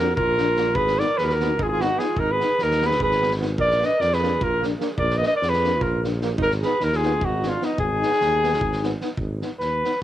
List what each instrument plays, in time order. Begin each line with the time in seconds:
Already playing: tuba F2, flugelhorn A#4
0.00 euphonium D4, alto saxophone F#4
0.15 alto saxophone F4, flugelhorn A#4, kick
0.20 tuba A#1
0.38 trombone A#3, euphonium D4, snare
0.56 trombone A#3, euphonium D4, snare
0.75 alto saxophone G#4, flugelhorn B4, kick
0.80 tuba G#1
0.87 snare
0.99 trombone B3, euphonium D#4, alto saxophone A#4, flugelhorn D5, snare
1.17 tuba D#2, alto saxophone G#4, flugelhorn B4, snare
1.22 alto saxophone F#4 G#4, flugelhorn A#4 B4
1.29 alto saxophone F#4, flugelhorn A#4, snare
1.40 trombone B3, snare
1.44 euphonium D#4
1.59 tuba G#1, alto saxophone D#4, flugelhorn G#4, kick
1.65 alto saxophone F4, flugelhorn G#4
1.72 alto saxophone F4, flugelhorn G#4
1.80 trombone B3, alto saxophone D#4, euphonium D#4, flugelhorn F#4, snare
1.96 trombone B3, flugelhorn G#4, snare
2.02 euphonium D#4, alto saxophone F4
2.17 tuba G#1, alto saxophone D#4, flugelhorn A#4, kick
2.31 alto saxophone G#4, flugelhorn B4
2.38 trombone B3, snare
2.43 euphonium D#4
2.59 tuba D#2, alto saxophone D#4, snare
2.63 flugelhorn A#4
2.71 snare
2.81 trombone B3, euphonium D#4, snare
2.85 alto saxophone G#4, flugelhorn B4
2.91 snare
3.00 tuba G#1, alto saxophone G#4, flugelhorn B4, kick
3.11 snare
3.20 trombone B3, snare
3.24 euphonium D#4
3.31 snare
3.39 trombone B3, euphonium D#4, snare
3.58 tuba A#1, alto saxophone A#4, flugelhorn D5, kick
3.70 snare
3.79 trombone A#3, euphonium D4, alto saxophone B4, snare
3.85 flugelhorn D#5
3.98 tuba F2, alto saxophone A#4, flugelhorn D5, snare
4.11 alto saxophone G#4, flugelhorn B4, snare
4.21 trombone A#3, euphonium D4, snare
4.41 tuba A#1, alto saxophone F4, flugelhorn A#4, kick
4.60 trombone A#3, snare
4.65 euphonium D4
4.80 trombone A#3, euphonium D4, snare
4.98 tuba A#1, alto saxophone A#4, flugelhorn D5, kick
5.10 snare
5.16 alto saxophone B4, flugelhorn D#5
5.20 trombone A#3, euphonium D4, snare
5.25 alto saxophone B4, flugelhorn D#5
5.33 alto saxophone A#4, flugelhorn D5
5.42 tuba F2, alto saxophone G#4, snare
5.49 flugelhorn B4, snare
5.64 trombone A#3, euphonium D4, snare
5.76 alto saxophone F4
5.81 tuba A#1, flugelhorn A#4, kick
6.03 trombone A#3, euphonium D4, snare
6.21 trombone A#3, euphonium D4, snare
6.38 tuba G#1, alto saxophone D#4, kick
6.43 flugelhorn A#4
6.50 snare
6.62 euphonium D#4, alto saxophone G#4, flugelhorn B4, snare
6.66 trombone B3
6.80 tuba D#2, alto saxophone D#4, flugelhorn A#4, snare
6.92 alto saxophone F4, flugelhorn G#4, snare
7.03 trombone B3, euphonium D#4, snare
7.21 tuba G#1, alto saxophone D#4, flugelhorn F#4, kick
7.43 trombone B3, alto saxophone D4, euphonium D#4, snare
7.49 flugelhorn F4
7.62 trombone B3, alto saxophone B3, euphonium D#4, flugelhorn D#4, snare
7.78 tuba G#1, flugelhorn G#4, kick
7.84 alto saxophone D#4
8.01 trombone B3, euphonium D#4, snare
8.12 snare
8.21 tuba D#2, snare
8.43 trombone B3, euphonium D#4, snare
8.53 snare
8.61 tuba G#1, kick
8.72 snare
8.82 trombone B3, euphonium D#4, snare
9.01 trombone B3, euphonium D#4, snare
9.17 tuba G#1, kick
9.41 trombone B3, euphonium D#4, snare
9.59 tuba D#2, flugelhorn B4, snare
9.84 trombone B3, euphonium D#4, snare